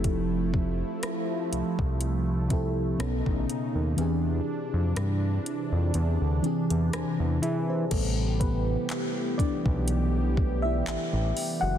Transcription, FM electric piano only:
0.00 1.12 F3 medium
0.00 1.13 C4 medium
0.00 1.14 E4 medium
0.00 1.14 G4 medium
0.00 1.15 A4 loud
2.49 2.99 F3 medium
2.49 2.99 C4 medium
2.49 3.00 E4 medium
2.49 3.00 G4 medium
2.53 3.01 A4 medium
2.98 3.79 B2 medium
2.98 3.80 B3 medium
2.98 3.80 C#4 medium
2.98 3.81 D#4 medium
3.02 3.81 A4 medium
3.96 5.47 E3 medium
3.96 5.47 C4 medium
3.96 5.48 D4 medium
3.96 5.48 G4 medium
4.01 5.49 G#4 medium
6.42 7.56 E3 medium
6.42 7.57 C4 medium
6.42 7.57 D4 medium
6.42 6.94 G4 medium
6.46 6.94 G#4 medium
6.94 7.41 C5 medium
6.94 7.40 G#5 medium
7.43 7.68 G#4 medium
7.43 7.68 E5 medium
7.69 8.16 E4 medium
7.69 8.16 C5 medium
7.91 9.35 C3 medium
7.91 9.35 G3 medium
7.91 8.38 A3 medium
7.91 8.41 B3 medium
7.91 8.42 A4 medium
8.40 9.36 B3 medium
8.40 9.42 B4 medium
9.38 10.61 D4 medium
9.38 10.67 D5 loud
10.62 11.59 E4 medium
10.62 11.64 E5 loud
11.61 11.78 F#4 medium
11.61 11.78 F#5 loud

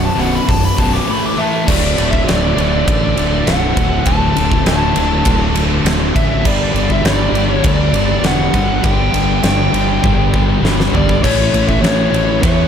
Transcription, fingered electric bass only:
0.18 0.38 B0 medium
0.49 0.69 B0 loud
0.78 0.99 B0 loud
1.68 1.94 D1 loud
1.98 2.24 D1 medium
2.29 2.55 D1 loud
2.56 2.83 D1 medium
2.87 3.13 A1 loud
3.17 3.43 D1 medium
3.47 3.73 B0 loud
3.77 4.03 D1 loud
4.06 4.33 D1 loud
4.38 4.64 D1 medium
4.66 4.92 D1 loud
4.96 5.23 D1 medium
5.26 5.79 D1 loud
5.85 6.11 D1 medium
6.15 6.45 A1 medium
6.45 6.72 G1 loud
6.74 7.01 G1 medium
7.04 7.31 G1 loud
7.32 7.60 G1 medium
7.64 7.91 D2 loud
7.93 8.20 G1 medium
8.22 8.50 E1 medium
8.54 8.81 G1 loud
8.84 9.11 G1 loud
9.14 9.41 G1 medium
9.44 9.70 G1 loud
9.73 10.00 G1 medium
10.04 10.57 G1 loud
10.62 10.89 G1 medium
10.92 11.19 G1 loud
11.24 11.50 A1 loud
11.53 11.79 A1 medium
11.82 12.09 A1 loud
12.13 12.39 A1 medium
12.43 12.68 E2 loud

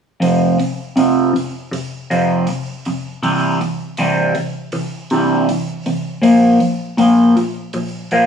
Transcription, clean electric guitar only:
0.20 0.56 F2 medium
0.20 0.57 C3 medium
0.20 0.57 F3 medium
0.59 0.93 F2 medium
0.59 0.93 C3 medium
0.96 1.32 F2 medium
0.96 1.32 C3 medium
0.96 1.32 F3 medium
1.33 1.68 F2 medium
1.33 1.68 C3 medium
1.71 2.06 F2 medium
1.71 2.06 C3 medium
2.10 2.46 F2 medium
2.10 2.45 C3 medium
2.10 2.46 F3 medium
2.48 2.82 F2 medium
2.48 2.82 C3 medium
2.86 3.20 F2 medium
2.86 3.20 C3 medium
3.23 3.58 C3 medium
3.23 3.58 E3 medium
3.23 3.59 G3 medium
3.61 3.95 C3 medium
3.61 3.95 E3 medium
3.98 4.34 C3 medium
3.98 4.34 E3 medium
3.98 4.34 G3 medium
4.35 4.69 C3 medium
4.35 4.70 E3 medium
4.73 5.07 C3 medium
4.73 5.07 E3 medium
5.11 5.47 C3 medium
5.11 5.47 E3 medium
5.11 5.48 G3 medium
5.50 5.83 C3 medium
5.50 5.83 E3 medium
5.86 6.20 C3 medium
5.86 6.20 E3 medium
6.21 6.58 A#2 medium
6.21 6.59 F3 medium
6.21 6.59 A#3 medium
6.59 6.95 A#2 medium
6.59 6.95 F3 medium
6.97 7.34 A#2 medium
6.97 7.35 F3 medium
6.97 7.35 A#3 medium
7.36 7.71 A#2 medium
7.36 7.71 F3 medium
7.74 8.08 A#2 medium
7.74 8.08 F3 medium
8.12 8.26 A#2 medium
8.12 8.26 F3 medium
8.12 8.26 A#3 medium

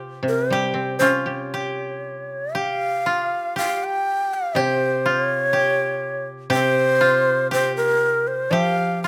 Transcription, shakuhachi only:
0.28 0.49 A#4 medium
0.49 0.98 C5 medium
0.99 1.35 C5 medium
1.35 2.56 C#5 medium
2.55 3.57 F5 loud
3.58 3.85 F5 loud
3.84 4.35 G5 medium
4.34 4.61 F5 medium
4.60 5.12 C5 loud
5.10 6.28 C#5 loud
6.53 7.48 C5 loud
7.53 7.76 C5 medium
7.77 8.29 A#4 medium
8.27 8.53 C5 medium
8.52 9.03 F5 loud
9.04 9.08 F5 loud

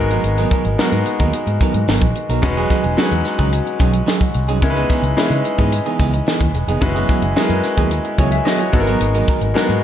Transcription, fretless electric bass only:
0.00 0.17 G#1 medium
0.24 0.44 G#1 medium
0.65 0.75 G#1 medium
0.92 1.02 G#2 medium
1.20 1.30 D#2 medium
1.47 1.57 G#2 medium
1.74 1.84 G#2 medium
1.88 1.98 G#1 medium
2.01 2.12 A#1 medium
2.29 2.39 B1 medium
2.84 2.94 E1 medium
3.12 3.22 E2 medium
3.39 3.59 C#2 medium
3.80 4.01 B1 medium
4.35 4.62 C2 medium
4.62 4.83 C#2 medium
5.02 5.13 C#2 medium
5.30 5.41 C#3 medium
5.59 5.79 G#2 medium
6.00 6.20 C#2 medium
6.40 6.51 D#2 medium
6.54 6.64 E1 medium
6.67 6.78 F1 medium
6.82 7.02 F#1 medium
7.22 7.33 F#1 medium
7.49 7.60 F#2 loud
7.78 7.98 D#2 medium
8.18 8.39 C#2 medium
8.73 8.94 G#1 medium
9.00 9.21 G#1 medium
9.41 9.52 G#1 medium
9.55 muted fretless electric bass stroke soft
9.69 9.80 G#2 medium

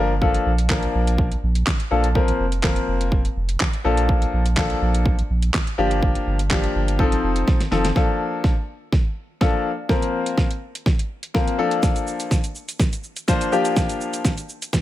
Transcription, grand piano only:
0.00 0.12 F3 medium
0.00 0.12 A#3 medium
0.00 0.12 D4 medium
0.00 0.12 A#4 medium
0.21 0.50 F3 medium
0.21 0.50 A#3 medium
0.21 0.50 D4 medium
0.21 0.50 A4 medium
0.70 1.27 F3 medium
0.70 1.27 A#3 medium
0.70 1.27 D4 medium
0.70 1.27 A#4 medium
1.91 2.06 F3 medium
1.91 2.06 A#3 medium
1.91 2.06 D4 medium
1.91 2.06 A4 medium
2.15 2.43 F3 medium
2.15 2.44 A#3 medium
2.15 2.44 C4 medium
2.15 2.44 A#4 medium
2.63 3.20 F3 medium
2.63 3.20 A#3 medium
2.63 3.20 C4 medium
2.63 3.20 A#4 medium
3.84 4.43 F3 medium
3.84 4.43 A#3 medium
3.84 4.43 D4 medium
3.84 4.43 A4 loud
4.57 5.14 F3 medium
4.57 5.14 A#3 medium
4.57 5.14 D4 medium
4.57 5.14 A4 loud
5.78 6.37 F3 medium
5.78 6.37 A#3 medium
5.78 6.37 D4 medium
5.78 6.37 G4 loud
6.51 6.97 F3 medium
6.51 6.99 A#3 medium
6.51 6.99 D4 medium
6.51 6.99 G4 medium
6.99 7.58 F3 medium
6.99 7.58 C4 medium
6.99 7.58 D#4 medium
6.99 7.58 A4 loud
7.71 7.86 F3 medium
7.71 7.86 C4 medium
7.71 7.86 D#4 medium
7.71 7.86 A4 medium
7.96 8.52 F3 medium
7.96 8.52 A#3 medium
7.96 8.52 D4 medium
7.96 8.53 A4 medium
9.41 9.69 F3 medium
9.41 9.69 A#3 medium
9.41 9.69 D4 medium
9.41 9.69 A4 medium
9.89 10.46 F3 medium
9.89 10.46 A#3 medium
9.89 10.46 C4 medium
9.89 10.46 A#4 medium
11.34 11.57 F3 medium
11.34 11.57 A#3 medium
11.34 11.59 C4 medium
11.34 11.59 A#4 medium
11.58 12.36 F3 medium
11.58 12.36 A#3 medium
11.58 12.36 D4 medium
11.58 12.37 A4 loud
13.28 13.51 F3 medium
13.28 13.51 A#3 medium
13.28 13.51 D4 medium
13.28 13.52 C5 loud
13.52 14.30 F3 medium
13.52 14.30 A#3 medium
13.52 14.30 D4 medium
13.52 14.30 G4 loud

